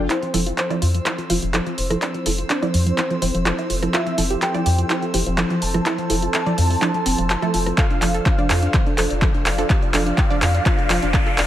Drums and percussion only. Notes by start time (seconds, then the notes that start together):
0.10 clap, closed hi-hat
0.23 closed hi-hat
0.34 open hi-hat
0.46 closed hi-hat
0.58 clap, closed hi-hat
0.70 closed hi-hat
0.82 open hi-hat
0.94 closed hi-hat
1.06 clap, closed hi-hat
1.18 closed hi-hat
1.30 open hi-hat
1.42 closed hi-hat
1.54 clap, closed hi-hat
1.66 closed hi-hat
1.78 open hi-hat
1.90 cross-stick, closed hi-hat
2.02 clap, closed hi-hat
2.14 closed hi-hat
2.26 open hi-hat
2.38 closed hi-hat
2.50 clap, closed hi-hat
2.63 closed hi-hat
2.74 open hi-hat
2.87 closed hi-hat
2.98 clap, closed hi-hat
3.11 closed hi-hat
3.22 open hi-hat
3.35 closed hi-hat
3.46 clap, closed hi-hat
3.59 closed hi-hat
3.70 open hi-hat
3.83 cross-stick, closed hi-hat
3.94 clap, closed hi-hat
4.07 closed hi-hat
4.18 open hi-hat
4.31 closed hi-hat
4.42 clap, closed hi-hat
4.54 closed hi-hat
4.66 open hi-hat
4.78 closed hi-hat
4.90 clap, closed hi-hat
5.02 closed hi-hat
5.14 open hi-hat
5.26 closed hi-hat
5.38 clap, closed hi-hat
5.50 closed hi-hat
5.62 open hi-hat
5.74 cross-stick, closed hi-hat
5.86 clap, closed hi-hat
5.98 closed hi-hat
6.10 open hi-hat
6.22 closed hi-hat
6.34 clap, closed hi-hat
6.46 closed hi-hat
6.58 open hi-hat
6.70 open hi-hat
6.82 clap, closed hi-hat
6.94 closed hi-hat
7.06 open hi-hat
7.18 closed hi-hat
7.30 clap, closed hi-hat
7.42 closed hi-hat
7.54 open hi-hat
7.66 cross-stick, closed hi-hat
7.78 kick, clap, closed hi-hat
7.90 closed hi-hat
8.02 clap, open hi-hat
8.14 closed hi-hat
8.26 kick, clap, closed hi-hat
8.39 closed hi-hat
8.50 clap, open hi-hat
8.62 closed hi-hat
8.74 kick, clap, closed hi-hat
8.86 closed hi-hat
8.98 clap, open hi-hat
9.10 closed hi-hat
9.22 kick, clap, closed hi-hat
9.34 closed hi-hat
9.46 clap, open hi-hat
9.58 closed hi-hat
9.70 kick, clap, closed hi-hat
9.82 closed hi-hat
9.94 clap, open hi-hat
10.06 closed hi-hat
10.18 kick, clap, closed hi-hat
10.30 closed hi-hat
10.42 clap, open hi-hat
10.54 closed hi-hat
10.66 kick, clap, closed hi-hat
10.79 closed hi-hat
10.90 clap, open hi-hat
11.02 closed hi-hat
11.14 kick, clap, closed hi-hat
11.27 closed hi-hat
11.38 clap, open hi-hat